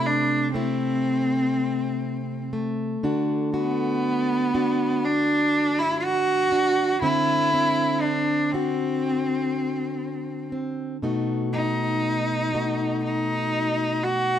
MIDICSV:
0, 0, Header, 1, 3, 480
1, 0, Start_track
1, 0, Tempo, 1000000
1, 1450, Time_signature, 4, 2, 24, 8
1, 6908, End_track
2, 0, Start_track
2, 0, Title_t, "Cello"
2, 0, Program_c, 0, 42
2, 29, Note_on_c, 0, 62, 80
2, 253, Note_off_c, 0, 62, 0
2, 256, Note_on_c, 0, 60, 84
2, 1193, Note_off_c, 0, 60, 0
2, 1713, Note_on_c, 0, 59, 85
2, 2420, Note_on_c, 0, 62, 85
2, 2428, Note_off_c, 0, 59, 0
2, 2778, Note_on_c, 0, 64, 86
2, 2785, Note_off_c, 0, 62, 0
2, 2892, Note_on_c, 0, 66, 96
2, 2899, Note_off_c, 0, 64, 0
2, 3368, Note_off_c, 0, 66, 0
2, 3371, Note_on_c, 0, 64, 91
2, 3845, Note_on_c, 0, 62, 74
2, 3852, Note_off_c, 0, 64, 0
2, 4089, Note_on_c, 0, 60, 77
2, 4096, Note_off_c, 0, 62, 0
2, 5050, Note_off_c, 0, 60, 0
2, 5535, Note_on_c, 0, 63, 74
2, 6234, Note_off_c, 0, 63, 0
2, 6262, Note_on_c, 0, 63, 76
2, 6735, Note_on_c, 0, 66, 80
2, 6743, Note_off_c, 0, 63, 0
2, 6908, Note_off_c, 0, 66, 0
2, 6908, End_track
3, 0, Start_track
3, 0, Title_t, "Steel-string acoustic guitar"
3, 0, Program_c, 1, 25
3, 0, Note_on_c, 1, 48, 59
3, 0, Note_on_c, 1, 57, 53
3, 0, Note_on_c, 1, 60, 46
3, 256, Note_off_c, 1, 60, 0
3, 258, Note_off_c, 1, 57, 0
3, 260, Note_on_c, 1, 57, 54
3, 266, Note_on_c, 1, 60, 54
3, 268, Note_on_c, 1, 64, 57
3, 1212, Note_off_c, 1, 57, 0
3, 1214, Note_on_c, 1, 57, 50
3, 1422, Note_off_c, 1, 48, 0
3, 1428, Note_off_c, 1, 60, 0
3, 1456, Note_on_c, 1, 50, 65
3, 1457, Note_off_c, 1, 64, 0
3, 1459, Note_on_c, 1, 62, 57
3, 1463, Note_on_c, 1, 66, 55
3, 1696, Note_off_c, 1, 66, 0
3, 1698, Note_on_c, 1, 66, 59
3, 2180, Note_off_c, 1, 62, 0
3, 2181, Note_off_c, 1, 66, 0
3, 2182, Note_on_c, 1, 62, 56
3, 2183, Note_on_c, 1, 66, 63
3, 2894, Note_off_c, 1, 57, 0
3, 3124, Note_off_c, 1, 62, 0
3, 3130, Note_on_c, 1, 62, 47
3, 3340, Note_off_c, 1, 62, 0
3, 3364, Note_off_c, 1, 50, 0
3, 3370, Note_on_c, 1, 50, 66
3, 3375, Note_on_c, 1, 60, 50
3, 3389, Note_off_c, 1, 66, 0
3, 3611, Note_off_c, 1, 60, 0
3, 3619, Note_on_c, 1, 60, 49
3, 4093, Note_off_c, 1, 60, 0
3, 4097, Note_on_c, 1, 60, 49
3, 4101, Note_on_c, 1, 66, 61
3, 5045, Note_off_c, 1, 60, 0
3, 5050, Note_on_c, 1, 60, 45
3, 5261, Note_off_c, 1, 60, 0
3, 5267, Note_off_c, 1, 66, 0
3, 5291, Note_off_c, 1, 50, 0
3, 5292, Note_on_c, 1, 47, 55
3, 5295, Note_on_c, 1, 57, 54
3, 5297, Note_on_c, 1, 63, 52
3, 5302, Note_on_c, 1, 66, 54
3, 5527, Note_off_c, 1, 63, 0
3, 5533, Note_on_c, 1, 63, 47
3, 6012, Note_off_c, 1, 63, 0
3, 6017, Note_off_c, 1, 66, 0
3, 6018, Note_off_c, 1, 57, 0
3, 6019, Note_on_c, 1, 57, 54
3, 6023, Note_on_c, 1, 63, 48
3, 6023, Note_on_c, 1, 66, 57
3, 6908, Note_off_c, 1, 47, 0
3, 6908, Note_off_c, 1, 57, 0
3, 6908, Note_off_c, 1, 63, 0
3, 6908, Note_off_c, 1, 66, 0
3, 6908, End_track
0, 0, End_of_file